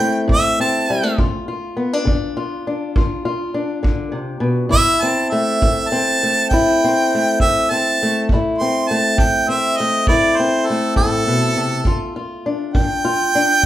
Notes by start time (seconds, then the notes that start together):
Already playing: C4 E4 G5
0.00 A3
0.28 A2, kick
0.32 E5
0.60 C4 A5
0.90 G3
1.03 A3
1.18 D3 F4, kick
1.48 F4
1.77 B3
1.93 D4
2.05 D3, kick
2.37 F4
2.67 D4
2.96 D3 F4, kick
3.25 F4
3.54 D4
3.83 D3, kick
4.12 C3
4.40 B2
4.69 A2 E4 E5, kick
5.02 C4 A5
5.30 A3 E5
5.62 A2, kick
5.89 C4 A5
6.23 A3
6.49 A2 G5, kick
6.53 E4
6.84 C4
7.15 A3
7.40 A2 E5, kick
7.70 C4 A5
8.03 A3
8.29 A2, kick
8.34 E4
8.58 C4 C6
8.88 A3 A5
9.18 A2 G5, kick
9.49 C4 E5
9.77 A3 D#5
10.07 A2 E4 D5, kick
10.36 C4 C5
10.67 A3 A4
10.96 A2 A4, kick
11.28 B2
11.57 C3
11.85 D3 F4, kick
12.16 F4
12.46 D4
12.74 D3 G5, kick
13.05 F4
13.35 D4